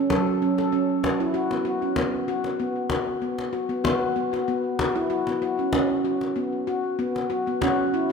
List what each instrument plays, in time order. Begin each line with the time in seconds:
Already playing: handpan C#4
0.10 handpan F#3 A4, cajon bass, cajon slap
0.42 handpan C#4
0.58 handpan A4, cajon slap
0.72 handpan C#4
1.03 handpan F#4, cajon bass, cajon slap
1.20 handpan E4
1.34 handpan F#4, cajon slap
1.51 handpan B3, cajon slap
1.65 handpan F#4
1.82 handpan C#4, cajon slap
1.96 handpan B3, cajon bass, cajon slap
2.13 cajon slap
2.28 handpan F#4
2.44 cajon slap
2.60 handpan B3
2.90 handpan F#4, cajon bass, cajon slap
3.22 handpan B3, cajon slap
3.39 cajon slap
3.53 handpan F#4
3.69 handpan B3, cajon slap
3.84 handpan B3 F#4, cajon bass, cajon slap
4.02 cajon slap
4.16 handpan B3
4.33 handpan F#4, cajon slap
4.48 handpan B3
4.79 handpan F#4, cajon bass, cajon slap
4.96 handpan E4
5.10 handpan F#4, cajon slap
5.27 handpan B3, cajon slap
5.42 handpan F#4
5.58 handpan C#4, cajon slap
5.73 handpan C#4, cajon bass, cajon slap
5.89 cajon slap
6.05 handpan F#4
6.21 cajon slap
6.36 handpan B3
6.67 handpan F#4
6.99 handpan B3, cajon slap
7.16 cajon slap
7.30 handpan F#4
7.47 handpan B3, cajon slap
7.61 handpan C#4 F#4, cajon bass, cajon slap
7.94 handpan E4, cajon slap